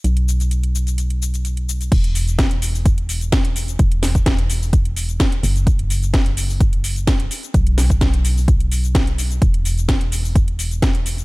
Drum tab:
CC |----------------|x---------------|----------------|----------------|
HH |xx-xxx-xxx-xxx-x|xxoxxxo-xxoxxxox|xxoxxxo-xxoxxxox|xxoxxxo-xxoxxxox|
SH |x-xxx-xxx-xxx-xx|x-xxx-xxx-xxx-xx|x-xxx-xxx-xxx-xx|x-xxx-xxx-xxx-xx|
SD |----------------|----o-------o---|--o-o-------o---|----o-------o---|
BD |----------------|o---o---o---o---|o--oo---o---o---|o---o---o---o---|

CC |----------------|----------------|
HH |xxo-xxo-xxoxxxox|xxoxxxo-xxoxxxox|
SH |x-xxx-xxx-xxx-xx|x-xxx-xxx-xxx-xx|
SD |--o-o-------o---|----o-------o---|
BD |o--oo---o---o---|o---o---o---o---|